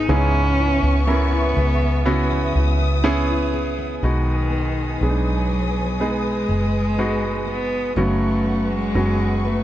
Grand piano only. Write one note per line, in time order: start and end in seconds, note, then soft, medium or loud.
0.00 0.12 G#3 medium
0.00 0.09 B3 medium
0.00 0.12 D#4 medium
0.00 0.09 G#4 medium
0.00 0.12 B4 medium
0.09 1.53 G#2 medium
0.09 1.03 B3 medium
0.09 1.03 C#4 medium
0.09 1.03 E4 medium
0.09 1.03 G#4 medium
1.07 2.01 B3 medium
1.07 2.01 C#4 medium
1.07 2.01 E4 medium
1.07 2.01 A#4 medium
2.06 2.99 B3 medium
2.06 2.99 C#4 medium
2.06 3.00 E4 medium
2.06 3.00 F#4 medium
3.04 3.98 B3 medium
3.04 3.98 C#4 medium
3.04 3.98 E4 medium
3.04 3.98 G#4 medium
4.03 4.97 G#3 medium
4.03 4.97 B3 medium
4.03 4.97 D#4 medium
4.03 4.97 F#4 medium
5.02 5.95 G#3 soft
5.02 5.96 B3 soft
5.02 5.08 D4 soft
5.02 5.96 G#4 soft
5.09 5.99 D#4 soft
6.00 6.94 G#3 medium
6.00 6.94 B3 medium
6.00 6.94 D#4 soft
6.00 6.94 G#4 medium
6.99 7.92 G#3 medium
6.99 7.92 B3 medium
6.99 7.92 D#4 medium
6.99 7.92 F#4 medium
7.97 9.40 C#3 medium
7.97 8.90 F#3 medium
7.97 8.90 B3 medium
7.97 8.91 C#4 soft
7.97 8.90 F#4 medium
8.95 9.63 F#3 medium
8.95 9.63 B3 soft
8.95 9.63 C#4 soft
8.95 9.63 F#4 medium